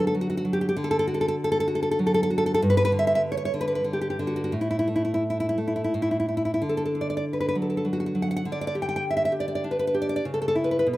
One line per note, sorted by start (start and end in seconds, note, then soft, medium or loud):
0.00 0.70 D3 medium
0.00 0.13 F#3 medium
0.00 0.14 D4 medium
0.07 0.14 A4 medium
0.15 0.44 F#3 medium
0.21 0.28 F#4 medium
0.30 0.36 F#4 medium
0.37 0.44 F#4 medium
0.45 0.74 F#3 medium
0.53 0.59 G4 medium
0.61 0.67 G4 medium
0.69 0.75 G4 medium
0.76 2.56 D3 medium
0.84 0.90 A4 medium
0.91 0.97 A4 medium
0.99 1.05 A4 medium
1.07 1.66 F#4 medium
1.14 1.20 A4 medium
1.21 1.27 A4 medium
1.28 1.35 A4 medium
1.44 1.51 A4 medium
1.52 1.58 A4 medium
1.60 1.66 A4 medium
1.68 2.29 F#4 medium
1.75 1.81 A4 medium
1.83 1.90 A4 medium
1.91 1.98 A4 medium
1.99 2.60 F#3 medium
2.07 2.13 A4 medium
2.14 2.21 A4 medium
2.23 2.30 A4 medium
2.30 2.60 F#4 medium
2.38 2.45 A4 medium
2.46 2.53 A4 medium
2.54 2.60 A4 medium
2.62 4.50 G2 medium
2.70 2.76 B4 medium
2.77 2.83 B4 medium
2.85 2.91 B4 loud
2.92 3.52 D3 medium
2.99 3.06 E5 medium
3.07 3.14 E5 medium
3.15 3.21 E5 medium
3.32 3.36 C#5 medium
3.37 3.44 C#5 medium
3.45 3.52 C#5 medium
3.54 3.83 D3 medium
3.61 3.66 B4 medium
3.68 3.74 B4 medium
3.75 3.84 B4 medium
3.84 4.18 D3 medium
3.93 4.00 G4 medium
4.01 4.09 G4 medium
4.10 4.18 G4 medium
4.19 4.53 D3 medium
4.27 4.35 F#4 medium
4.36 4.43 F#4 medium
4.44 4.53 F#4 medium
4.52 5.88 A2 medium
4.61 4.69 E4 medium
4.71 4.78 E4 medium
4.79 4.88 E4 medium
4.88 5.56 A3 soft
4.96 5.04 E4 medium
5.05 5.13 E4 medium
5.14 5.22 E4 medium
5.30 5.39 E4 medium
5.40 5.48 E4 medium
5.49 5.57 E4 medium
5.58 5.92 A3 soft
5.68 5.75 E4 medium
5.76 5.83 E4 medium
5.84 5.93 E4 medium
5.94 6.59 A2 medium
6.02 6.10 E4 medium
6.11 6.18 E4 medium
6.20 6.27 E4 medium
6.29 6.36 E4 medium
6.37 6.44 E4 medium
6.45 6.53 E4 medium
6.54 6.61 E4 medium
6.62 8.43 D3 medium
6.69 6.76 A4 medium
6.77 6.84 A4 medium
6.85 6.93 A4 medium
6.95 7.87 D4 soft
7.01 7.08 D5 medium
7.10 7.16 D5 medium
7.17 7.24 D5 medium
7.33 7.39 B4 medium
7.40 7.47 B4 medium
7.49 7.56 B4 medium
7.55 7.84 F#3 soft
7.62 7.69 A4 medium
7.70 7.76 A4 medium
7.77 7.85 A4 medium
7.85 8.14 F#3 soft
7.93 7.99 F#4 medium
8.00 8.05 F#4 medium
8.06 8.15 F#4 medium
8.15 8.45 F#3 soft
8.22 8.30 F#5 medium
8.31 8.35 F#5 medium
8.36 8.45 F#5 medium
8.45 10.20 D3 medium
8.52 8.60 D5 medium
8.61 8.66 D5 medium
8.67 8.75 D5 medium
8.75 9.31 G4 medium
8.82 8.87 G5 medium
8.89 8.95 G5 medium
8.96 9.04 G5 medium
9.11 9.15 E5 medium
9.17 9.24 E5 medium
9.25 9.33 E5 medium
9.32 9.93 G4 medium
9.40 9.47 D5 medium
9.48 9.54 D5 medium
9.55 9.63 D5 medium
9.64 10.24 D4 soft
9.71 9.78 B4 medium
9.79 9.86 B4 medium
9.87 9.94 B4 medium
9.94 10.24 G4 medium
10.02 10.08 D5 medium
10.09 10.15 D5 medium
10.16 10.24 D5 medium
10.25 10.85 C#3 medium
10.34 10.40 A4 medium
10.42 10.47 A4 medium
10.48 10.55 A4 medium
10.55 10.87 E4 soft
10.64 10.70 B4 medium
10.71 10.78 B4 medium
10.79 10.87 B4 medium
10.87 10.97 B2 medium
10.93 10.97 B4 medium